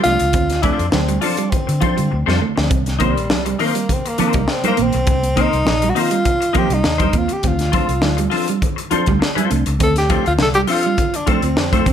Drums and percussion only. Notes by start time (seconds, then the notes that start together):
0.04 closed hi-hat
0.19 closed hi-hat
0.32 kick, closed hi-hat, low conga
0.50 snare, closed hi-hat
0.63 kick, closed hi-hat, high conga
0.79 closed hi-hat
0.92 snare, muted conga, high conga
1.08 closed hi-hat
1.22 open hi-hat, muted conga, high conga
1.37 closed hi-hat
1.52 kick, closed hi-hat, low conga
1.69 closed hi-hat
1.81 kick, closed hi-hat, muted conga, high conga
1.98 closed hi-hat
2.12 muted conga
2.28 snare, high conga
2.41 muted conga, low conga
2.58 snare
2.70 kick, closed hi-hat, muted conga, low conga
2.86 snare, closed hi-hat
3.00 kick, closed hi-hat, high conga
3.17 closed hi-hat
3.30 snare, high conga
3.46 closed hi-hat
3.59 open hi-hat, high conga
3.75 closed hi-hat
3.89 kick, closed hi-hat, muted conga, low conga
4.06 closed hi-hat
4.18 closed hi-hat, high conga
4.33 kick, closed hi-hat
4.48 snare
4.64 closed hi-hat, high conga
4.77 closed hi-hat
4.93 closed hi-hat
5.06 kick, closed hi-hat, muted conga, low conga
5.23 closed hi-hat
5.37 kick, closed hi-hat, high conga
5.53 closed hi-hat
5.65 snare, muted conga, high conga
5.82 closed hi-hat
5.96 open hi-hat, muted conga, high conga
6.11 closed hi-hat
6.25 kick, closed hi-hat, low conga
6.42 closed hi-hat
6.54 kick, closed hi-hat, muted conga, high conga
6.70 closed hi-hat
6.84 snare, muted conga
7.00 kick, closed hi-hat, high conga
7.13 kick, closed hi-hat, muted conga
7.29 closed hi-hat
7.43 kick, closed hi-hat, low conga
7.59 snare, closed hi-hat
7.73 kick, closed hi-hat, muted conga, high conga
7.89 closed hi-hat
8.02 snare, muted conga, high conga
8.18 closed hi-hat
8.31 open hi-hat, high conga
8.48 closed hi-hat
8.62 kick, closed hi-hat, low conga
8.78 closed hi-hat
8.91 closed hi-hat, high conga
9.06 kick, closed hi-hat
9.22 snare
9.36 closed hi-hat, high conga
9.51 closed hi-hat
9.66 closed hi-hat
9.79 kick, closed hi-hat, low conga
9.96 snare, closed hi-hat
10.09 kick, closed hi-hat, muted conga, high conga
10.26 closed hi-hat
10.38 snare, high conga
10.54 closed hi-hat
10.67 open hi-hat, high conga
10.83 closed hi-hat
10.97 kick, closed hi-hat, low conga
11.14 closed hi-hat
11.27 kick, closed hi-hat, muted conga, high conga
11.42 closed hi-hat
11.57 snare
11.73 kick, closed hi-hat, high conga
11.86 kick, closed hi-hat, low conga